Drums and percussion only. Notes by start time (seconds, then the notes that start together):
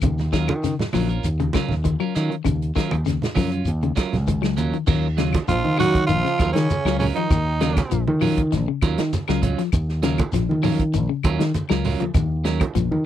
0.02 kick, closed hi-hat, low conga, claves, shekere
0.18 snare, high conga, shekere
0.33 kick, snare, closed hi-hat, shekere
0.48 closed hi-hat, high conga, claves, shekere
0.64 snare, closed hi-hat, shekere
0.79 snare, low conga, shekere
0.93 open hi-hat, high conga, claves, shekere
1.10 closed hi-hat, shekere
1.24 closed hi-hat, shekere
1.40 closed hi-hat, high conga, shekere
1.53 kick, snare, closed hi-hat, high conga, claves, shekere
1.69 snare, low conga, shekere
1.84 kick, closed hi-hat, high conga, shekere
2.00 claves, shekere
2.16 snare, closed hi-hat, shekere
2.31 closed hi-hat, shekere
2.45 kick, closed hi-hat, low conga, claves, shekere
2.62 closed hi-hat, shekere
2.76 kick, snare, closed hi-hat, shekere
2.91 closed hi-hat, high conga, claves, shekere
3.06 snare, closed hi-hat, shekere
3.22 snare, closed hi-hat, low conga, shekere
3.35 kick, open hi-hat, high conga, claves, shekere
3.51 closed hi-hat, shekere
3.65 closed hi-hat, shekere
3.82 closed hi-hat, high conga, shekere
3.96 kick, snare, closed hi-hat, high conga, claves, shekere
4.13 snare, closed hi-hat, low conga, shekere
4.27 kick, closed hi-hat, high conga, shekere
4.43 snare, closed hi-hat, claves, shekere
4.57 closed hi-hat, high conga, shekere
4.73 closed hi-hat, shekere
4.87 kick, crash, high conga, low conga, claves, shekere
5.18 snare, closed hi-hat, shekere
5.33 kick, snare, closed hi-hat, high conga, claves
5.48 snare, closed hi-hat, high conga, low conga, shekere
5.65 high conga
5.77 snare, open hi-hat, low conga, claves, shekere
5.95 kick, closed hi-hat, high conga
6.09 closed hi-hat, high conga, shekere
6.26 snare
6.39 kick, snare, closed hi-hat, high conga, claves, shekere
6.56 snare, closed hi-hat
6.70 closed hi-hat, high conga, shekere
6.86 snare, claves
7.01 open hi-hat, low conga, shekere
7.16 closed hi-hat
7.30 kick, snare, closed hi-hat, high conga, low conga, claves, shekere
7.60 snare, closed hi-hat, shekere
7.76 kick, snare, closed hi-hat, high conga, claves
7.91 closed hi-hat, high conga, shekere
8.08 high conga
8.21 open hi-hat, low conga, claves, shekere
8.38 kick, closed hi-hat, high conga
8.52 snare, closed hi-hat, high conga, shekere
8.81 kick, snare, closed hi-hat, high conga, claves, shekere
8.98 snare, closed hi-hat
9.13 snare, closed hi-hat, high conga, shekere
9.28 snare, claves
9.43 kick, closed hi-hat, low conga, shekere
9.59 snare, closed hi-hat
9.72 kick, closed hi-hat, claves, shekere
9.89 snare
10.03 snare, closed hi-hat, shekere
10.18 kick, closed hi-hat, high conga, claves
10.32 snare, closed hi-hat, high conga, low conga, shekere
10.51 high conga
10.63 open hi-hat, low conga, claves, shekere
10.79 kick, closed hi-hat
10.93 closed hi-hat, high conga, shekere
11.23 kick, closed hi-hat, high conga, claves, shekere
11.40 snare, closed hi-hat
11.54 closed hi-hat, high conga, shekere
11.69 snare, claves
11.84 open hi-hat, low conga, shekere
12.00 closed hi-hat, high conga
12.14 kick, closed hi-hat, high conga, low conga, claves, shekere
12.45 snare, closed hi-hat, shekere
12.60 kick, closed hi-hat, high conga, claves
12.75 closed hi-hat, high conga, low conga, shekere
12.92 high conga